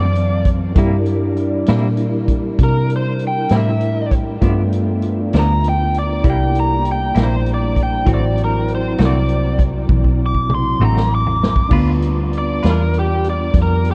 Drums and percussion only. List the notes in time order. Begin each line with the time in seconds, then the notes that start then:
0.15 closed hi-hat
0.45 kick, closed hi-hat
0.76 kick, closed hi-hat
1.06 closed hi-hat
1.37 closed hi-hat
1.66 snare, closed hi-hat
1.97 closed hi-hat
2.28 kick, closed hi-hat
2.59 kick, closed hi-hat
2.90 closed hi-hat
3.19 closed hi-hat
3.49 snare, closed hi-hat
3.81 closed hi-hat
4.11 kick, closed hi-hat
4.42 kick, closed hi-hat
4.72 closed hi-hat
5.02 closed hi-hat
5.33 snare, closed hi-hat
5.64 closed hi-hat
5.94 closed hi-hat
6.24 kick, closed hi-hat
6.55 closed hi-hat
6.85 closed hi-hat
7.15 snare, closed hi-hat
7.46 closed hi-hat
7.76 kick, closed hi-hat
8.07 kick, closed hi-hat
8.37 closed hi-hat
8.68 closed hi-hat
8.98 snare, closed hi-hat
9.29 closed hi-hat
9.59 kick, closed hi-hat
9.89 kick, high tom
10.04 kick
10.34 kick
10.49 mid tom
10.80 mid tom
10.97 snare
11.26 floor tom
11.43 snare
11.56 kick
11.71 kick, crash
12.02 closed hi-hat
12.33 closed hi-hat
12.63 snare, closed hi-hat
12.94 closed hi-hat
13.24 closed hi-hat
13.54 kick, snare, closed hi-hat
13.85 closed hi-hat